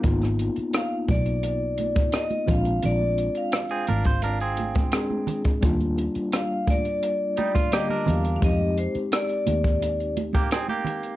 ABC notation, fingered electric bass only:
X:1
M:4/4
L:1/16
Q:1/4=86
K:Eb
V:1 name="Fingered electric bass" clef=bass
A,,,3 z3 _C,,6 z2 B,,,2 | B,,,3 z3 A,,,6 z4 | E,,3 z8 z3 _F,,2 | F,,3 z3 E,,6 z4 |]